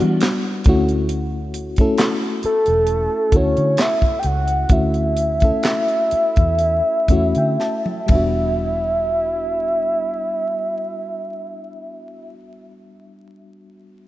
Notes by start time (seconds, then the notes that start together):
Already playing: G3 B3 D4 E4 F#4 G4
0.00 E3, closed hi-hat
0.21 snare, clap, closed hi-hat
0.64 D2 A3 C#4, kick, closed hi-hat
0.69 E4 F#4
0.89 closed hi-hat
1.09 closed hi-hat
1.54 closed hi-hat
1.76 A3 C#4, kick, closed hi-hat
1.80 E4 A4
1.98 snare, clap, closed hi-hat
2.43 A4, muted fingered electric bass stroke, closed hi-hat
2.66 E1, closed hi-hat
2.87 closed hi-hat
3.32 D2 A3 C#4 E4 F#4, kick, closed hi-hat
3.36 C#5
3.57 D3, closed hi-hat
3.77 E5, snare, clap, closed hi-hat
4.02 kick
4.19 G5, closed hi-hat
4.24 C#2 F#5
4.48 closed hi-hat
4.64 F#5
4.69 D2 A3 C#4 E4 F#4 E5, kick, closed hi-hat
4.94 closed hi-hat
5.17 closed hi-hat
5.40 A3 C#4 E4, kick, closed hi-hat
5.45 A4
5.63 snare, clap, closed hi-hat
5.88 closed hi-hat
6.11 muted fingered electric bass stroke, closed hi-hat
6.36 E2, kick, closed hi-hat
6.59 closed hi-hat
7.08 E2 A3 C#4 E4 F#4 E5, kick, closed hi-hat
7.35 D3 G5, closed hi-hat
7.60 A5, snare
7.86 high tom
8.06 E1 G3 B3, kick, ride
8.12 D4 F#4 E5